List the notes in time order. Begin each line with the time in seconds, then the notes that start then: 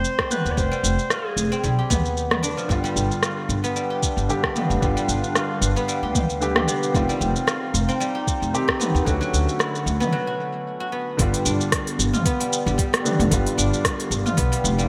Already playing: G3 C4 F4 G4 C5
0.05 shaker
0.19 G4, kick, cross-stick
0.31 B3 B4, mid tom, shaker
0.46 D#2, shaker
0.51 D5
0.57 F1 G3 C5, kick, shaker
0.72 G3, shaker
0.83 F1, shaker
0.99 shaker
1.10 F4 G#4, cross-stick, shaker
1.37 F1, shaker
1.52 C4, shaker
1.64 B1 G3, kick, shaker
1.79 G4
1.90 D#2 B3, kick, mid tom, shaker
2.06 shaker
2.17 shaker
2.31 B3, cross-stick, mid tom
2.43 D4, shaker
2.57 F3, shaker
2.68 G1 D3 G3 B3 F4, kick, shaker
2.84 G3, shaker
2.88 D4
2.96 G1, shaker
3.11 shaker
3.22 F4 F5, cross-stick, shaker
3.49 G1, shaker
3.64 B3, shaker
3.76 G3, shaker
3.90 G4
4.01 B4, kick, shaker
4.17 G1, shaker
4.28 D3 G3 B3 G4, shaker
4.44 G4, kick, cross-stick
4.55 B3, mid tom, shaker
4.70 F1, shaker
4.81 G1 D3 G3 B3 F4, kick, shaker
4.97 G3, shaker
5.08 G1, shaker
5.24 shaker
5.35 F4, cross-stick, shaker
5.61 G1, shaker
5.76 B3, shaker
5.88 G3, shaker
6.03 D2 G4
6.15 kick, mid tom, shaker
6.30 shaker
6.41 D3 G3 B3 G4, shaker
6.56 G4, cross-stick, mid tom
6.68 B3, shaker
6.83 shaker
6.92 F1 D#3 G3 C4 F4, kick, shaker
7.09 G3 D#4, shaker
7.21 F1, shaker
7.36 shaker
7.47 F4, cross-stick, shaker
7.73 F1 C5, shaker
7.89 C4, shaker
8.00 G3, shaker
8.15 G4
8.27 kick, shaker
8.42 F1, shaker
8.53 D#3 C4 G4, shaker
8.68 G4, kick, cross-stick
8.80 B3, mid tom, shaker
8.95 D#2, shaker
9.05 D2 D3 F#3 A3 C#4, kick, shaker
9.09 F#4
9.21 F#3, shaker
9.30 D2 D3
9.34 shaker
9.49 shaker
9.59 E4, cross-stick, shaker
9.75 shaker
9.86 D2, shaker
10.00 B3, mid tom, shaker
10.12 F#3
10.27 F#4
10.80 F#4
10.92 B3
11.17 G1 D3 G3 B3, kick, open hi-hat, shaker
11.21 F4
11.34 open hi-hat, shaker
11.45 G1 D4, shaker
11.50 G4
11.61 D5, shaker
11.72 kick, cross-stick, open hi-hat, shaker
11.87 open hi-hat, shaker
11.99 G1, shaker
12.13 F4, mid tom, shaker
12.26 B3, kick, open hi-hat, shaker
12.33 F5
12.40 G3, open hi-hat, shaker
12.53 shaker
12.66 G1 G3, shaker
12.78 G3, kick, open hi-hat, shaker
12.93 G3, cross-stick, open hi-hat
13.04 D3 G3 B3 D4, mid tom, shaker
13.20 F1, mid tom, open hi-hat, shaker
13.30 G1 D3 G3 B3 F4, kick, open hi-hat, shaker
13.46 open hi-hat, shaker
13.58 G1 D4, shaker
13.74 shaker
13.85 kick, cross-stick, open hi-hat, shaker
14.00 open hi-hat, shaker
14.11 G1, shaker
14.26 F4, mid tom, shaker
14.37 B1 B3, kick, open hi-hat, shaker
14.52 G3, open hi-hat, shaker
14.64 F1, shaker
14.78 G3, shaker